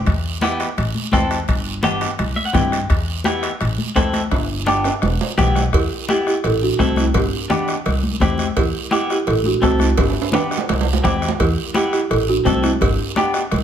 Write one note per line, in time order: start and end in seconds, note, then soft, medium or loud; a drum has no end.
0.06 0.63 E2 medium
0.06 bombo low medium
0.06 bombo rim medium
0.06 high conga soft
0.06 high timbale medium
0.06 long guiro medium
0.41 0.67 B3 medium
0.41 0.67 E4 medium
0.41 0.67 G4 medium
0.41 bombo rim medium
0.41 high conga medium
0.41 high timbale medium
0.41 short guiro medium
0.60 bombo rim medium
0.60 high timbale medium
0.60 short guiro medium
0.77 0.92 A1 medium
0.77 bombo rim medium
0.77 high conga soft
0.77 high timbale medium
0.77 long guiro medium
0.95 high conga medium
1.12 1.41 E2 medium
1.12 1.38 C4 medium
1.12 1.38 E4 medium
1.12 1.38 A4 medium
1.12 bombo low medium
1.12 bombo rim medium
1.12 high conga medium
1.12 high timbale medium
1.12 low timbale medium
1.12 short guiro medium
1.31 bombo rim medium
1.31 high timbale medium
1.31 short guiro medium
1.48 2.05 G1 medium
1.48 bombo low medium
1.48 bombo rim medium
1.48 high conga soft
1.48 high timbale medium
1.48 long guiro medium
1.83 2.08 B3 medium
1.83 2.08 D4 medium
1.83 2.09 G4 loud
1.83 bombo rim medium
1.83 high conga loud
1.83 low conga medium
1.83 high timbale medium
1.83 short guiro medium
2.01 bombo rim medium
2.01 high timbale medium
2.01 short guiro medium
2.18 2.33 C2 medium
2.18 bombo rim medium
2.18 high conga soft
2.18 high timbale medium
2.18 long guiro medium
2.36 2.45 E5 medium
2.36 high conga medium
2.45 2.53 F#5 medium
2.53 2.83 G2 medium
2.53 2.79 C4 medium
2.53 2.79 E4 medium
2.53 2.79 G4 medium
2.53 2.87 G5 medium
2.53 bombo low medium
2.53 bombo rim medium
2.53 high conga medium
2.53 low conga medium
2.53 high timbale medium
2.53 low timbale medium
2.53 short guiro medium
2.72 bombo rim medium
2.72 high timbale medium
2.72 short guiro medium
2.89 3.47 E2 medium
2.89 bombo low medium
2.89 bombo rim medium
2.89 high conga soft
2.89 high timbale medium
2.89 long guiro medium
3.24 3.50 B3 medium
3.24 3.50 E4 medium
3.24 3.50 G4 medium
3.24 bombo rim medium
3.24 high conga medium
3.24 high timbale medium
3.24 short guiro medium
3.43 bombo rim medium
3.43 high timbale medium
3.43 short guiro medium
3.61 3.75 A1 medium
3.61 bombo rim medium
3.61 high conga soft
3.61 high timbale medium
3.61 long guiro medium
3.78 high conga medium
3.95 4.25 E2 medium
3.95 4.21 C4 medium
3.95 4.21 E4 medium
3.95 4.21 A4 medium
3.95 bombo low medium
3.95 bombo rim medium
3.95 high conga medium
3.95 high timbale medium
3.95 low timbale medium
3.95 short guiro medium
4.13 bombo rim medium
4.13 high conga medium
4.13 high timbale medium
4.13 short guiro medium
4.31 4.88 G1 medium
4.31 bombo low medium
4.31 bombo rim medium
4.31 high conga soft
4.31 high timbale medium
4.31 long guiro medium
4.66 4.92 B3 medium
4.66 4.92 D4 medium
4.66 4.92 G4 medium
4.66 bombo rim medium
4.66 high conga medium
4.66 short guiro medium
4.84 bombo rim medium
4.84 high timbale loud
4.84 short guiro medium
5.02 5.17 E1 medium
5.02 bombo rim medium
5.02 high conga soft
5.02 low timbale medium
5.02 long guiro medium
5.21 low timbale medium
5.38 5.66 B1 medium
5.38 5.63 B3 medium
5.38 5.63 E4 medium
5.38 5.63 G4 medium
5.38 bombo low medium
5.38 bombo rim medium
5.38 high conga medium
5.38 low conga medium
5.38 low timbale medium
5.38 short guiro medium
5.56 bombo rim medium
5.56 low timbale medium
5.56 short guiro medium
5.73 5.87 E2 medium
5.73 6.07 E4 medium
5.73 6.06 G4 medium
5.73 bombo low medium
5.73 bombo rim medium
5.73 cowbell loud
5.73 high conga soft
5.73 long guiro medium
6.09 6.34 B3 medium
6.09 6.34 E4 soft
6.09 6.26 E4 medium
6.09 6.27 G4 medium
6.09 6.34 G4 medium
6.09 bombo rim medium
6.09 high conga medium
6.09 short guiro medium
6.27 6.44 E4 medium
6.27 6.44 G4 medium
6.27 bombo rim medium
6.27 short guiro medium
6.44 6.72 A1 medium
6.44 6.61 E4 medium
6.44 6.63 A4 medium
6.44 bombo rim medium
6.44 cowbell medium
6.44 high conga soft
6.44 long guiro medium
6.62 6.95 D4 medium
6.62 6.95 F#4 medium
6.79 7.08 C2 medium
6.79 7.04 C4 medium
6.79 7.04 E4 medium
6.79 7.05 A4 medium
6.79 bombo low medium
6.79 bombo rim medium
6.79 high conga medium
6.79 short guiro medium
6.96 7.07 C4 medium
6.96 7.07 E4 medium
6.96 bombo rim medium
6.96 high conga medium
6.96 short guiro medium
7.14 7.29 G1 loud
7.14 8.18 D4 medium
7.14 8.18 G4 medium
7.14 bombo low medium
7.14 bombo rim medium
7.14 cowbell loud
7.14 long guiro medium
7.50 7.75 B3 medium
7.50 7.75 D4 medium
7.50 7.75 G4 medium
7.50 bombo rim medium
7.50 high conga loud
7.50 low conga medium
7.50 short guiro medium
7.68 bombo rim medium
7.68 short guiro medium
7.86 8.14 C2 medium
7.86 bombo rim medium
7.86 cowbell medium
7.86 high conga soft
7.86 long guiro medium
8.03 high conga medium
8.20 8.50 E2 medium
8.20 8.46 C4 medium
8.20 8.46 E4 medium
8.20 8.46 G4 medium
8.20 bombo low medium
8.20 bombo rim medium
8.20 high conga medium
8.20 low conga medium
8.20 low timbale medium
8.20 short guiro medium
8.38 bombo rim medium
8.38 high conga medium
8.38 short guiro medium
8.57 8.71 E2 loud
8.57 8.90 E4 medium
8.57 8.90 G4 medium
8.57 bombo low medium
8.57 bombo rim medium
8.57 cowbell loud
8.57 long guiro medium
8.91 9.16 B3 medium
8.91 9.16 E4 medium
8.91 9.09 E4 medium
8.91 9.16 G4 medium
8.91 9.09 G4 medium
8.91 bombo rim medium
8.91 high conga loud
8.91 short guiro medium
9.10 9.26 E4 medium
9.10 9.29 G4 loud
9.10 bombo rim medium
9.10 short guiro medium
9.26 9.56 A1 medium
9.26 9.44 E4 medium
9.26 9.44 A4 loud
9.26 bombo rim medium
9.26 cowbell medium
9.26 high conga soft
9.26 long guiro medium
9.43 9.53 D4 medium
9.43 9.54 F#4 medium
9.43 high conga medium
9.62 9.91 C2 medium
9.62 9.87 C4 medium
9.62 9.79 C4 medium
9.62 9.87 E4 soft
9.62 9.80 F#4 medium
9.62 9.87 A4 medium
9.62 bombo low medium
9.62 bombo rim medium
9.62 high conga medium
9.62 low timbale medium
9.62 short guiro medium
9.79 9.89 C4 medium
9.79 9.89 E4 medium
9.79 bombo rim medium
9.79 high conga medium
9.79 short guiro medium
9.98 10.12 G1 medium
9.98 11.00 D4 medium
9.98 11.01 G4 medium
9.98 bombo low medium
9.98 bombo rim medium
9.98 cowbell loud
9.98 high timbale medium
9.98 long guiro medium
10.10 high timbale medium
10.22 high timbale loud
10.32 10.58 B3 medium
10.32 10.58 D4 medium
10.32 10.58 G4 medium
10.32 bombo rim medium
10.32 high conga loud
10.32 low conga medium
10.32 high timbale loud
10.32 short guiro medium
10.51 bombo rim medium
10.51 short guiro medium
10.58 low timbale loud
10.68 10.97 C2 loud
10.68 bombo rim medium
10.68 cowbell medium
10.68 high conga soft
10.68 low timbale medium
10.68 long guiro medium
10.81 low timbale loud
10.93 low timbale medium
11.04 11.32 E2 medium
11.04 11.29 C4 medium
11.04 11.29 E4 medium
11.04 11.29 G4 medium
11.04 bombo low medium
11.04 bombo rim medium
11.04 high conga medium
11.04 low conga medium
11.04 low timbale medium
11.04 short guiro medium
11.22 bombo rim medium
11.22 short guiro medium
11.29 low timbale medium
11.40 11.54 E2 medium
11.40 11.73 E4 medium
11.40 11.73 G4 medium
11.40 bombo low medium
11.40 bombo rim medium
11.40 cowbell loud
11.40 high conga soft
11.40 long guiro medium
11.74 11.99 B3 medium
11.74 12.00 E4 medium
11.74 11.92 E4 medium
11.74 12.00 G4 medium
11.74 11.92 G4 medium
11.74 bombo rim medium
11.74 high conga loud
11.74 short guiro medium
11.93 12.10 E4 medium
11.93 12.09 G4 medium
11.93 bombo rim medium
11.93 short guiro medium
12.10 12.39 A1 medium
12.10 12.19 E4 medium
12.10 12.18 A4 loud
12.10 bombo rim medium
12.10 cowbell medium
12.10 high conga soft
12.10 long guiro medium
12.29 12.62 D4 medium
12.29 12.61 F#4 medium
12.45 12.74 C2 medium
12.45 12.70 C4 medium
12.45 12.70 E4 medium
12.45 12.71 A4 medium
12.45 bombo low medium
12.45 bombo rim medium
12.45 high conga medium
12.45 low timbale medium
12.45 short guiro medium
12.63 12.80 C4 medium
12.63 12.81 E4 medium
12.63 bombo rim medium
12.63 high conga medium
12.63 short guiro medium
12.81 12.95 G1 medium
12.81 13.64 D4 medium
12.81 13.64 G4 medium
12.81 bombo low medium
12.81 bombo rim medium
12.81 cowbell loud
12.81 long guiro medium
13.16 13.41 B3 medium
13.16 13.41 D4 medium
13.16 13.42 G4 medium
13.16 bombo rim medium
13.16 high conga medium
13.16 short guiro medium
13.34 bombo rim medium
13.34 short guiro medium
13.51 13.64 C2 loud
13.51 bombo rim medium
13.51 cowbell medium
13.51 high conga soft
13.51 long guiro medium